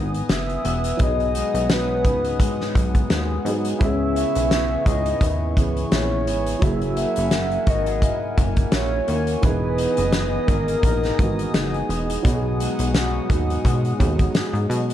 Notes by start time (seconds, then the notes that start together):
Already playing: G#1 D#3 E3 B3 D#4 G#4 B4 G#5 D#6
0.14 closed hi-hat
0.29 F#1 E5, snare, closed hi-hat
0.50 closed hi-hat
0.64 E1 B3, closed hi-hat
0.84 closed hi-hat
0.97 B1 B2 F#3 B3 D#4 F#5 G#5, kick, closed hi-hat
1.02 G#4 D#5
1.20 closed hi-hat
1.34 G#3, closed hi-hat
1.54 B1, closed hi-hat
1.70 F#3 B4, snare, closed hi-hat
2.04 C#2 D#4, kick, closed hi-hat
2.25 closed hi-hat
2.40 G#3, kick, closed hi-hat
2.61 snare
2.75 B1 F#3, kick, closed hi-hat
2.95 kick, closed hi-hat
3.10 D#2 G#3, snare, closed hi-hat
3.45 G#2 F#3 B3 D#4 G#4, closed hi-hat
3.65 closed hi-hat
3.79 C#2 C#3 B3 C#4 E4 C#6, kick, closed hi-hat
3.83 G#4 E5
4.16 E4, closed hi-hat
4.35 B1, closed hi-hat
4.51 B3, snare, closed hi-hat
4.86 C#2 G#4 D#5, kick, closed hi-hat
5.06 closed hi-hat
5.21 D#2 E4, kick, closed hi-hat
5.56 C#2 E3 B3 C#4 G#4, kick, closed hi-hat
5.77 closed hi-hat
5.92 A#1 E4 C#5, snare, closed hi-hat
6.27 G#1 B3, closed hi-hat
6.47 closed hi-hat
6.59 F#1 F#3 A#3 E4 A#4 E5 F#5, kick, closed hi-hat
6.64 G#4
6.82 closed hi-hat
6.96 E4, closed hi-hat
7.16 F#1, closed hi-hat
7.31 A#3, snare, closed hi-hat
7.51 closed hi-hat
7.67 G#1 F#4 D#5, kick, closed hi-hat
7.86 G#4, closed hi-hat
8.02 E4, kick, closed hi-hat
8.37 F#1 A#3, kick, closed hi-hat
8.56 kick, closed hi-hat
8.72 A#1 E4 C#5, snare, closed hi-hat
9.08 D#2 A#3, closed hi-hat
9.27 closed hi-hat
9.41 E1 E3 B3 D#4 B4 D#5 D#6, kick, closed hi-hat
9.46 G#4
9.78 D#4, closed hi-hat
9.97 F#1, closed hi-hat
10.13 B3, snare, closed hi-hat
10.47 G#1 G#4 A#4, kick, closed hi-hat
10.68 closed hi-hat
10.83 A#1 D#4, kick, closed hi-hat
11.03 snare, closed hi-hat
11.19 G#1 E3 B3 D#4 F#4, kick, closed hi-hat
11.39 closed hi-hat
11.54 F#1 D#4 G#4, snare, closed hi-hat
11.74 closed hi-hat
11.89 E1 B3, closed hi-hat
12.10 closed hi-hat
12.22 B1 B2 F#3 B3 D#4 F#4 F#5 D#6, kick, closed hi-hat
12.28 F#4
12.34 G#4
12.60 G#3, closed hi-hat
12.79 B1, closed hi-hat
12.94 F#3, snare, closed hi-hat
13.30 D#2 D#4, kick, closed hi-hat
13.50 closed hi-hat
13.65 B2 G#3, kick, closed hi-hat
13.85 closed hi-hat
13.99 D#2 F#3 B3 D#4 G#4, kick, closed hi-hat
14.19 kick, closed hi-hat
14.34 G#2 G#3, snare, closed hi-hat
14.53 G#2, closed hi-hat
14.70 B2 F#3, closed hi-hat
14.90 closed hi-hat